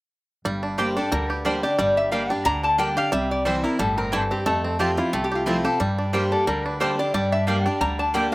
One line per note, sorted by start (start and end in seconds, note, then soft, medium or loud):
0.45 0.96 G1 medium
0.45 1.09 G2 medium
0.45 1.11 G3 medium
0.63 0.97 D4 medium
0.78 0.96 G3 medium
0.78 0.88 A#3 medium
0.78 0.96 A#3 medium
0.78 0.96 D4 medium
0.78 0.88 G4 medium
0.78 1.29 G4 medium
0.78 0.95 G4 medium
0.78 0.96 C5 medium
0.78 0.88 D5 medium
0.78 0.88 G5 loud
0.96 1.42 D4 medium
0.96 1.12 D4 medium
0.96 1.11 G4 medium
0.96 1.11 A4 medium
1.12 1.63 D2 medium
1.12 1.76 D3 medium
1.12 1.78 G3 medium
1.12 1.30 A#4 medium
1.30 1.63 G4 medium
1.30 1.45 B4 medium
1.45 1.63 G3 medium
1.45 1.55 A#3 medium
1.45 1.63 A#3 medium
1.45 1.93 D4 medium
1.45 1.63 D4 medium
1.45 1.55 G4 medium
1.45 1.63 G4 medium
1.45 1.63 C5 medium
1.45 1.55 D5 medium
1.45 1.55 G5 medium
1.63 1.79 D4 soft
1.63 2.96 G4 medium
1.63 1.78 G4 medium
1.63 1.78 D5 medium
1.79 2.30 G1 medium
1.79 2.43 G2 medium
1.79 2.12 G3 medium
1.79 1.96 D5 medium
1.97 2.12 E5 medium
2.12 2.30 G3 medium
2.12 2.60 G3 medium
2.12 2.22 A#3 medium
2.12 2.30 A#3 medium
2.12 2.30 D4 medium
2.12 2.22 G4 medium
2.12 2.29 G4 medium
2.12 2.22 D5 medium
2.12 2.30 F5 medium
2.12 2.22 G5 medium
2.30 2.44 D4 medium
2.30 2.45 D4 soft
2.30 2.45 G4 medium
2.30 2.45 G5 medium
2.45 2.96 D2 medium
2.45 3.09 D3 medium
2.45 2.77 D4 medium
2.45 2.63 A#5 loud
2.63 3.09 D3 soft
2.63 2.79 A5 medium
2.78 2.96 G3 medium
2.78 2.88 A#3 medium
2.78 2.97 A#3 medium
2.78 3.12 D4 medium
2.78 2.97 D4 medium
2.78 2.89 G4 medium
2.78 2.95 G4 medium
2.78 2.89 D5 medium
2.78 2.97 G5 medium
2.78 2.89 G5 loud
2.97 3.12 D4 soft
2.97 3.12 G4 medium
2.97 3.12 F5 loud
3.12 3.63 C2 medium
3.12 3.76 C3 medium
3.12 3.44 G3 medium
3.12 3.30 E5 medium
3.31 3.46 D5 medium
3.45 3.63 E3 medium
3.45 3.78 G3 medium
3.45 3.63 G3 soft
3.45 3.56 C4 medium
3.45 3.64 C4 medium
3.45 3.56 E4 medium
3.45 3.63 E4 medium
3.45 3.56 C5 loud
3.45 3.64 C5 medium
3.45 3.56 G5 medium
3.64 3.79 C4 soft
3.64 4.10 E4 medium
3.64 3.79 E4 medium
3.64 3.79 A#4 medium
3.79 4.30 G1 medium
3.79 4.11 A2 medium
3.79 4.27 G3 medium
3.79 3.97 A4 medium
3.98 4.30 C4 soft
3.98 4.12 A#4 loud
4.12 4.45 G2 medium
4.12 4.46 E3 medium
4.12 4.22 C4 medium
4.12 4.23 E4 medium
4.12 4.31 A4 medium
4.12 4.23 C5 medium
4.12 4.23 G5 medium
4.31 4.46 C4 medium
4.31 4.46 G4 medium
4.46 5.10 F2 medium
4.46 4.97 F2 medium
4.46 4.94 A3 medium
4.46 4.78 A4 medium
4.64 5.10 C4 medium
4.79 4.97 F3 medium
4.79 4.97 A3 medium
4.79 4.89 C4 medium
4.79 4.97 C4 medium
4.79 4.90 F4 medium
4.79 4.96 F4 medium
4.79 4.97 G4 medium
4.79 5.28 G4 medium
4.79 4.90 C5 medium
4.79 4.90 A5 medium
4.97 5.13 C4 soft
4.97 5.12 E4 medium
4.97 5.12 F4 medium
4.97 5.44 F4 medium
5.13 5.64 C2 medium
5.13 5.77 C3 medium
5.13 5.61 A3 medium
5.13 5.24 F4 medium
5.24 5.35 G4 medium
5.32 5.46 F4 medium
5.32 5.64 G4 medium
5.46 5.64 F3 medium
5.46 5.64 A3 medium
5.46 5.56 C4 medium
5.46 5.80 C4 medium
5.46 5.65 C4 medium
5.46 5.64 E4 medium
5.46 5.56 F4 medium
5.46 5.63 F4 medium
5.46 5.57 C5 medium
5.46 5.57 A5 medium
5.64 5.80 C4 soft
5.64 5.79 F4 medium
5.64 5.80 G4 medium
5.64 5.79 A4 medium
5.80 6.44 G2 medium
5.80 6.31 G2 medium
5.80 6.13 G3 medium
5.98 6.32 D4 soft
6.13 6.45 G3 soft
6.13 6.47 G3 medium
6.13 6.23 A#3 medium
6.13 6.46 A#3 medium
6.13 6.46 D4 medium
6.13 6.23 G4 medium
6.13 6.46 G4 medium
6.13 6.32 C5 medium
6.13 6.24 D5 medium
6.13 6.24 G5 medium
6.32 6.64 D4 medium
6.32 6.47 A4 medium
6.47 6.98 D2 medium
6.47 7.11 D3 medium
6.47 7.14 G3 medium
6.47 6.66 A#4 medium
6.66 6.98 D4 medium
6.66 6.80 B4 medium
6.80 7.29 D3 medium
6.80 6.98 G3 medium
6.80 6.90 A#3 medium
6.80 6.99 A#3 medium
6.80 6.99 D4 medium
6.80 6.91 G4 loud
6.80 6.98 G4 medium
6.80 6.99 C5 medium
6.80 6.91 D5 medium
6.80 6.91 G5 medium
6.99 7.31 D4 medium
6.99 7.14 D4 soft
6.99 7.14 G4 medium
6.99 7.13 D5 medium
7.14 7.65 G2 medium
7.14 7.78 G2 medium
7.14 7.47 G3 medium
7.14 7.32 D5 medium
7.32 7.64 D4 medium
7.32 7.47 E5 loud
7.47 7.80 G3 medium
7.47 7.65 G3 medium
7.47 7.57 A#3 medium
7.47 7.66 A#3 medium
7.47 7.66 D4 medium
7.47 7.57 G4 medium
7.47 7.65 G4 medium
7.47 7.58 D5 medium
7.47 7.66 F5 medium
7.47 7.58 G5 loud
7.66 7.98 D4 medium
7.66 7.81 D4 soft
7.66 7.81 G4 medium
7.66 7.81 G5 medium
7.81 8.32 D2 medium
7.81 8.35 D3 medium
7.81 8.29 G3 medium
7.81 7.99 A#5 medium
7.99 8.32 D4 medium
7.99 8.14 A5 medium
8.14 8.35 D3 medium
8.14 8.32 G3 medium
8.14 8.24 A#3 medium
8.14 8.32 A#3 medium
8.14 8.32 D4 medium
8.14 8.24 G4 medium
8.14 8.31 G4 medium
8.14 8.24 D5 medium
8.14 8.32 G5 medium
8.14 8.25 G5 medium